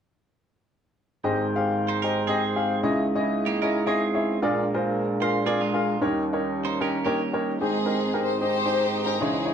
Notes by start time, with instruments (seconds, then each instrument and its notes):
1.23 grand piano G#1 G#2 G4 G#4 C5 D#5, tonewheel organ G#3 D#4 C5 G5
1.55 grand piano G4 G#4 C5 F5
1.88 clean electric guitar D#4 C5
2.02 grand piano G4 G#4 C5 D#5, clean electric guitar A#4
2.27 clean electric guitar C4 G#4, grand piano G4 G#4 C5 D#5
2.56 grand piano G4 G#4 C5 F5
2.83 grand piano C#2 C#3 E4 G#4 C#5 D#5, tonewheel organ E4 D#5
3.15 grand piano D#4 G#4 C#5 D#5
3.20 grand piano E4
3.46 clean electric guitar A#3 G4
3.62 clean electric guitar C#4 A#4, grand piano E4 G#4 C#5 D#5
3.86 clean electric guitar C4 G#4, grand piano E4 G#4 C#5 D#5
4.14 grand piano E4 G#4 C#5 E5
4.42 grand piano A#1 A#2 F4 G#4 A#4 D5, tonewheel organ D4 F4 A#4
4.74 grand piano F4 G#4 A#4 C5
5.21 grand piano F4 G#4 A#4 F5, clean electric guitar C5
5.46 clean electric guitar C4 G#4, grand piano F4 G#4 A#4 D5
5.61 clean electric guitar G#3 F4
5.73 grand piano F4 G#4 A#4 F5
6.01 grand piano D#2 D#3 D#4 G4 A#4 C#5, tonewheel organ G3 C#4 D#4
6.33 grand piano D#4 G4 A#4 C#5
6.65 clean electric guitar D#4 C5
6.80 clean electric guitar C#4 A#4, grand piano D#4 G4 A#4 D#5
7.05 clean electric guitar A#3 G4, grand piano D#4 G4 A#4 C#5
7.33 grand piano D#4 G4 A#4 C#5
7.61 grand piano G#1 G#2 D#4 G4 G#4 C5, tonewheel organ G#3 C4 C5 D#5, string section C4 D#4 G#4
7.85 grand piano D#4 G4 G#4 A#4
8.14 grand piano D#4 G4 G#4 A#4
8.25 string section C5
8.40 grand piano D#4 G4 G#4 D#5, string section D#4 G4 C5
8.65 grand piano D#4 G4 G#4 C5
9.04 grand piano D#4 G4 G#4 C5, string section A#4
9.19 grand piano C#2 C#3 D#4 E4 G#4 C#5, tonewheel organ E3 C#4, string section D#4 E4 G#4
9.45 grand piano D#4 E4 G#4 C#5